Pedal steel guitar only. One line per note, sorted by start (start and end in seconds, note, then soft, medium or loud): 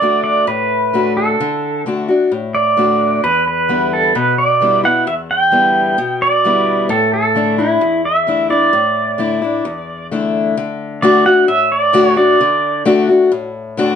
0.00 0.22 D5 medium
0.24 0.46 D5 medium
0.48 1.13 B4 medium
1.17 1.82 A4 medium
2.55 3.23 D5 medium
3.24 3.46 B4 medium
3.48 3.94 B4 medium
3.93 4.16 A4 medium
4.16 4.37 B4 medium
4.38 4.81 D5 loud
4.85 5.06 F#5 medium
5.08 5.14 E5 loud
5.31 6.25 G5 loud
6.22 6.93 D5 loud
6.90 7.12 A4 medium
7.14 7.61 A4 medium
7.59 8.06 E4 medium
8.05 8.50 E5 medium
8.50 10.07 D5 medium
11.02 11.24 D5 medium
11.26 11.48 F#5 medium
11.48 11.72 E5 loud
11.72 12.16 D5 medium
12.17 12.82 D5 medium